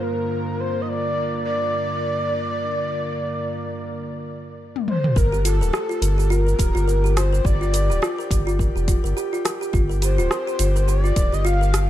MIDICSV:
0, 0, Header, 1, 6, 480
1, 0, Start_track
1, 0, Key_signature, -2, "minor"
1, 0, Tempo, 571429
1, 499, Time_signature, 4, 2, 24, 8
1, 9995, End_track
2, 0, Start_track
2, 0, Title_t, "Soft synth lead"
2, 0, Program_c, 0, 80
2, 24, Note_on_c, 0, 70, 100
2, 506, Note_on_c, 0, 72, 106
2, 518, Note_off_c, 0, 70, 0
2, 685, Note_on_c, 0, 75, 77
2, 698, Note_off_c, 0, 72, 0
2, 743, Note_on_c, 0, 74, 118
2, 755, Note_off_c, 0, 75, 0
2, 1213, Note_off_c, 0, 74, 0
2, 1218, Note_on_c, 0, 74, 116
2, 3825, Note_off_c, 0, 74, 0
2, 4106, Note_on_c, 0, 72, 86
2, 4345, Note_on_c, 0, 70, 98
2, 4357, Note_off_c, 0, 72, 0
2, 4582, Note_off_c, 0, 70, 0
2, 4586, Note_on_c, 0, 69, 95
2, 5303, Note_on_c, 0, 70, 118
2, 5316, Note_off_c, 0, 69, 0
2, 6017, Note_off_c, 0, 70, 0
2, 6022, Note_on_c, 0, 72, 101
2, 6259, Note_on_c, 0, 74, 119
2, 6272, Note_off_c, 0, 72, 0
2, 7219, Note_off_c, 0, 74, 0
2, 8421, Note_on_c, 0, 72, 94
2, 9145, Note_on_c, 0, 74, 109
2, 9158, Note_off_c, 0, 72, 0
2, 9523, Note_on_c, 0, 75, 99
2, 9535, Note_off_c, 0, 74, 0
2, 9621, Note_on_c, 0, 77, 108
2, 9634, Note_off_c, 0, 75, 0
2, 9995, Note_off_c, 0, 77, 0
2, 9995, End_track
3, 0, Start_track
3, 0, Title_t, "Kalimba"
3, 0, Program_c, 1, 108
3, 4335, Note_on_c, 1, 70, 78
3, 4467, Note_off_c, 1, 70, 0
3, 4472, Note_on_c, 1, 67, 72
3, 4572, Note_off_c, 1, 67, 0
3, 4577, Note_on_c, 1, 65, 71
3, 4701, Note_off_c, 1, 65, 0
3, 4715, Note_on_c, 1, 70, 74
3, 4808, Note_off_c, 1, 70, 0
3, 4816, Note_on_c, 1, 67, 75
3, 4940, Note_off_c, 1, 67, 0
3, 4951, Note_on_c, 1, 65, 74
3, 5051, Note_off_c, 1, 65, 0
3, 5056, Note_on_c, 1, 70, 73
3, 5135, Note_off_c, 1, 70, 0
3, 5191, Note_on_c, 1, 67, 71
3, 5252, Note_off_c, 1, 67, 0
3, 5294, Note_on_c, 1, 65, 97
3, 5427, Note_off_c, 1, 65, 0
3, 5432, Note_on_c, 1, 70, 68
3, 5532, Note_off_c, 1, 70, 0
3, 5533, Note_on_c, 1, 67, 78
3, 5614, Note_off_c, 1, 67, 0
3, 5669, Note_on_c, 1, 65, 99
3, 5765, Note_off_c, 1, 65, 0
3, 5776, Note_on_c, 1, 70, 75
3, 5908, Note_off_c, 1, 70, 0
3, 5914, Note_on_c, 1, 67, 77
3, 6013, Note_off_c, 1, 67, 0
3, 6018, Note_on_c, 1, 65, 73
3, 6142, Note_off_c, 1, 65, 0
3, 6154, Note_on_c, 1, 70, 75
3, 6248, Note_off_c, 1, 70, 0
3, 6255, Note_on_c, 1, 67, 75
3, 6380, Note_off_c, 1, 67, 0
3, 6393, Note_on_c, 1, 65, 76
3, 6492, Note_off_c, 1, 65, 0
3, 6497, Note_on_c, 1, 70, 75
3, 6576, Note_off_c, 1, 70, 0
3, 6636, Note_on_c, 1, 67, 74
3, 6694, Note_off_c, 1, 67, 0
3, 6738, Note_on_c, 1, 65, 89
3, 6868, Note_off_c, 1, 65, 0
3, 6875, Note_on_c, 1, 70, 77
3, 6973, Note_off_c, 1, 70, 0
3, 6979, Note_on_c, 1, 67, 72
3, 7057, Note_off_c, 1, 67, 0
3, 7114, Note_on_c, 1, 65, 101
3, 7208, Note_off_c, 1, 65, 0
3, 7217, Note_on_c, 1, 70, 77
3, 7348, Note_off_c, 1, 70, 0
3, 7355, Note_on_c, 1, 67, 74
3, 7453, Note_off_c, 1, 67, 0
3, 7460, Note_on_c, 1, 65, 71
3, 7583, Note_off_c, 1, 65, 0
3, 7593, Note_on_c, 1, 70, 77
3, 7687, Note_off_c, 1, 70, 0
3, 7700, Note_on_c, 1, 67, 84
3, 7823, Note_off_c, 1, 67, 0
3, 7836, Note_on_c, 1, 65, 76
3, 7934, Note_off_c, 1, 65, 0
3, 7936, Note_on_c, 1, 70, 73
3, 8016, Note_off_c, 1, 70, 0
3, 8074, Note_on_c, 1, 67, 75
3, 8134, Note_off_c, 1, 67, 0
3, 8175, Note_on_c, 1, 65, 96
3, 8307, Note_off_c, 1, 65, 0
3, 8312, Note_on_c, 1, 70, 76
3, 8412, Note_off_c, 1, 70, 0
3, 8419, Note_on_c, 1, 67, 73
3, 8497, Note_off_c, 1, 67, 0
3, 8554, Note_on_c, 1, 65, 94
3, 8647, Note_off_c, 1, 65, 0
3, 8660, Note_on_c, 1, 70, 80
3, 8790, Note_off_c, 1, 70, 0
3, 8798, Note_on_c, 1, 67, 78
3, 8895, Note_off_c, 1, 67, 0
3, 8897, Note_on_c, 1, 65, 73
3, 9021, Note_off_c, 1, 65, 0
3, 9037, Note_on_c, 1, 70, 74
3, 9129, Note_off_c, 1, 70, 0
3, 9137, Note_on_c, 1, 67, 78
3, 9261, Note_off_c, 1, 67, 0
3, 9272, Note_on_c, 1, 65, 71
3, 9372, Note_off_c, 1, 65, 0
3, 9377, Note_on_c, 1, 70, 76
3, 9456, Note_off_c, 1, 70, 0
3, 9513, Note_on_c, 1, 67, 70
3, 9573, Note_off_c, 1, 67, 0
3, 9615, Note_on_c, 1, 65, 104
3, 9747, Note_off_c, 1, 65, 0
3, 9753, Note_on_c, 1, 70, 76
3, 9852, Note_off_c, 1, 70, 0
3, 9857, Note_on_c, 1, 67, 75
3, 9936, Note_off_c, 1, 67, 0
3, 9995, End_track
4, 0, Start_track
4, 0, Title_t, "Analog synth pad"
4, 0, Program_c, 2, 89
4, 0, Note_on_c, 2, 43, 70
4, 0, Note_on_c, 2, 50, 68
4, 0, Note_on_c, 2, 58, 77
4, 0, Note_on_c, 2, 65, 71
4, 0, Note_on_c, 2, 70, 74
4, 3376, Note_off_c, 2, 58, 0
4, 3377, Note_off_c, 2, 70, 0
4, 3378, Note_off_c, 2, 65, 0
4, 3379, Note_off_c, 2, 43, 0
4, 3379, Note_off_c, 2, 50, 0
4, 5022, Note_on_c, 2, 67, 70
4, 9995, Note_off_c, 2, 67, 0
4, 9995, End_track
5, 0, Start_track
5, 0, Title_t, "Analog synth bass"
5, 0, Program_c, 3, 38
5, 4337, Note_on_c, 3, 31, 101
5, 4711, Note_on_c, 3, 26, 94
5, 4723, Note_off_c, 3, 31, 0
5, 4792, Note_off_c, 3, 26, 0
5, 5055, Note_on_c, 3, 31, 81
5, 5498, Note_off_c, 3, 31, 0
5, 5537, Note_on_c, 3, 26, 82
5, 5642, Note_off_c, 3, 26, 0
5, 5676, Note_on_c, 3, 31, 94
5, 6220, Note_off_c, 3, 31, 0
5, 6256, Note_on_c, 3, 31, 106
5, 6635, Note_on_c, 3, 26, 94
5, 6647, Note_off_c, 3, 31, 0
5, 6714, Note_off_c, 3, 26, 0
5, 6978, Note_on_c, 3, 31, 81
5, 7304, Note_off_c, 3, 31, 0
5, 7356, Note_on_c, 3, 29, 101
5, 7531, Note_off_c, 3, 29, 0
5, 7596, Note_on_c, 3, 31, 79
5, 7674, Note_off_c, 3, 31, 0
5, 8179, Note_on_c, 3, 31, 103
5, 8556, Note_on_c, 3, 26, 94
5, 8569, Note_off_c, 3, 31, 0
5, 8635, Note_off_c, 3, 26, 0
5, 8900, Note_on_c, 3, 31, 78
5, 9340, Note_off_c, 3, 31, 0
5, 9377, Note_on_c, 3, 26, 89
5, 9482, Note_off_c, 3, 26, 0
5, 9514, Note_on_c, 3, 31, 89
5, 9995, Note_off_c, 3, 31, 0
5, 9995, End_track
6, 0, Start_track
6, 0, Title_t, "Drums"
6, 3998, Note_on_c, 9, 48, 45
6, 4082, Note_off_c, 9, 48, 0
6, 4099, Note_on_c, 9, 47, 67
6, 4183, Note_off_c, 9, 47, 0
6, 4235, Note_on_c, 9, 45, 69
6, 4319, Note_off_c, 9, 45, 0
6, 4338, Note_on_c, 9, 36, 106
6, 4346, Note_on_c, 9, 69, 47
6, 4422, Note_off_c, 9, 36, 0
6, 4430, Note_off_c, 9, 69, 0
6, 4483, Note_on_c, 9, 69, 23
6, 4567, Note_off_c, 9, 69, 0
6, 4579, Note_on_c, 9, 42, 87
6, 4586, Note_on_c, 9, 69, 80
6, 4663, Note_off_c, 9, 42, 0
6, 4670, Note_off_c, 9, 69, 0
6, 4724, Note_on_c, 9, 69, 33
6, 4808, Note_off_c, 9, 69, 0
6, 4819, Note_on_c, 9, 37, 81
6, 4826, Note_on_c, 9, 69, 43
6, 4903, Note_off_c, 9, 37, 0
6, 4910, Note_off_c, 9, 69, 0
6, 4964, Note_on_c, 9, 69, 20
6, 5048, Note_off_c, 9, 69, 0
6, 5059, Note_on_c, 9, 42, 86
6, 5066, Note_on_c, 9, 69, 76
6, 5143, Note_off_c, 9, 42, 0
6, 5150, Note_off_c, 9, 69, 0
6, 5204, Note_on_c, 9, 69, 32
6, 5288, Note_off_c, 9, 69, 0
6, 5306, Note_on_c, 9, 69, 41
6, 5390, Note_off_c, 9, 69, 0
6, 5444, Note_on_c, 9, 69, 21
6, 5528, Note_off_c, 9, 69, 0
6, 5537, Note_on_c, 9, 36, 98
6, 5539, Note_on_c, 9, 42, 94
6, 5546, Note_on_c, 9, 69, 77
6, 5621, Note_off_c, 9, 36, 0
6, 5623, Note_off_c, 9, 42, 0
6, 5630, Note_off_c, 9, 69, 0
6, 5685, Note_on_c, 9, 69, 33
6, 5769, Note_off_c, 9, 69, 0
6, 5787, Note_on_c, 9, 69, 44
6, 5871, Note_off_c, 9, 69, 0
6, 5927, Note_on_c, 9, 69, 22
6, 6011, Note_off_c, 9, 69, 0
6, 6022, Note_on_c, 9, 37, 83
6, 6022, Note_on_c, 9, 42, 87
6, 6029, Note_on_c, 9, 69, 80
6, 6106, Note_off_c, 9, 37, 0
6, 6106, Note_off_c, 9, 42, 0
6, 6113, Note_off_c, 9, 69, 0
6, 6166, Note_on_c, 9, 69, 32
6, 6250, Note_off_c, 9, 69, 0
6, 6257, Note_on_c, 9, 36, 115
6, 6269, Note_on_c, 9, 69, 49
6, 6341, Note_off_c, 9, 36, 0
6, 6353, Note_off_c, 9, 69, 0
6, 6406, Note_on_c, 9, 69, 23
6, 6490, Note_off_c, 9, 69, 0
6, 6500, Note_on_c, 9, 42, 90
6, 6507, Note_on_c, 9, 69, 79
6, 6584, Note_off_c, 9, 42, 0
6, 6591, Note_off_c, 9, 69, 0
6, 6648, Note_on_c, 9, 69, 35
6, 6732, Note_off_c, 9, 69, 0
6, 6742, Note_on_c, 9, 37, 81
6, 6749, Note_on_c, 9, 69, 46
6, 6826, Note_off_c, 9, 37, 0
6, 6833, Note_off_c, 9, 69, 0
6, 6887, Note_on_c, 9, 69, 21
6, 6971, Note_off_c, 9, 69, 0
6, 6978, Note_on_c, 9, 36, 103
6, 6983, Note_on_c, 9, 42, 86
6, 6989, Note_on_c, 9, 69, 79
6, 7062, Note_off_c, 9, 36, 0
6, 7067, Note_off_c, 9, 42, 0
6, 7073, Note_off_c, 9, 69, 0
6, 7126, Note_on_c, 9, 69, 33
6, 7210, Note_off_c, 9, 69, 0
6, 7218, Note_on_c, 9, 36, 64
6, 7228, Note_on_c, 9, 69, 46
6, 7302, Note_off_c, 9, 36, 0
6, 7312, Note_off_c, 9, 69, 0
6, 7365, Note_on_c, 9, 69, 24
6, 7449, Note_off_c, 9, 69, 0
6, 7458, Note_on_c, 9, 42, 85
6, 7459, Note_on_c, 9, 36, 103
6, 7465, Note_on_c, 9, 69, 85
6, 7542, Note_off_c, 9, 42, 0
6, 7543, Note_off_c, 9, 36, 0
6, 7549, Note_off_c, 9, 69, 0
6, 7606, Note_on_c, 9, 69, 35
6, 7690, Note_off_c, 9, 69, 0
6, 7707, Note_on_c, 9, 69, 49
6, 7791, Note_off_c, 9, 69, 0
6, 7845, Note_on_c, 9, 69, 22
6, 7929, Note_off_c, 9, 69, 0
6, 7941, Note_on_c, 9, 37, 84
6, 7941, Note_on_c, 9, 42, 90
6, 7948, Note_on_c, 9, 69, 81
6, 8025, Note_off_c, 9, 37, 0
6, 8025, Note_off_c, 9, 42, 0
6, 8032, Note_off_c, 9, 69, 0
6, 8084, Note_on_c, 9, 69, 33
6, 8168, Note_off_c, 9, 69, 0
6, 8179, Note_on_c, 9, 36, 111
6, 8186, Note_on_c, 9, 69, 49
6, 8263, Note_off_c, 9, 36, 0
6, 8270, Note_off_c, 9, 69, 0
6, 8323, Note_on_c, 9, 69, 23
6, 8407, Note_off_c, 9, 69, 0
6, 8417, Note_on_c, 9, 42, 83
6, 8424, Note_on_c, 9, 69, 85
6, 8501, Note_off_c, 9, 42, 0
6, 8508, Note_off_c, 9, 69, 0
6, 8562, Note_on_c, 9, 69, 35
6, 8646, Note_off_c, 9, 69, 0
6, 8658, Note_on_c, 9, 37, 80
6, 8665, Note_on_c, 9, 69, 46
6, 8742, Note_off_c, 9, 37, 0
6, 8749, Note_off_c, 9, 69, 0
6, 8804, Note_on_c, 9, 69, 23
6, 8888, Note_off_c, 9, 69, 0
6, 8897, Note_on_c, 9, 42, 84
6, 8904, Note_on_c, 9, 69, 80
6, 8981, Note_off_c, 9, 42, 0
6, 8988, Note_off_c, 9, 69, 0
6, 9040, Note_on_c, 9, 69, 35
6, 9124, Note_off_c, 9, 69, 0
6, 9143, Note_on_c, 9, 69, 45
6, 9227, Note_off_c, 9, 69, 0
6, 9283, Note_on_c, 9, 69, 24
6, 9367, Note_off_c, 9, 69, 0
6, 9377, Note_on_c, 9, 42, 84
6, 9378, Note_on_c, 9, 36, 112
6, 9384, Note_on_c, 9, 69, 76
6, 9461, Note_off_c, 9, 42, 0
6, 9462, Note_off_c, 9, 36, 0
6, 9468, Note_off_c, 9, 69, 0
6, 9522, Note_on_c, 9, 69, 35
6, 9606, Note_off_c, 9, 69, 0
6, 9629, Note_on_c, 9, 69, 51
6, 9713, Note_off_c, 9, 69, 0
6, 9766, Note_on_c, 9, 69, 22
6, 9850, Note_off_c, 9, 69, 0
6, 9860, Note_on_c, 9, 37, 77
6, 9860, Note_on_c, 9, 42, 88
6, 9867, Note_on_c, 9, 69, 87
6, 9944, Note_off_c, 9, 37, 0
6, 9944, Note_off_c, 9, 42, 0
6, 9951, Note_off_c, 9, 69, 0
6, 9995, End_track
0, 0, End_of_file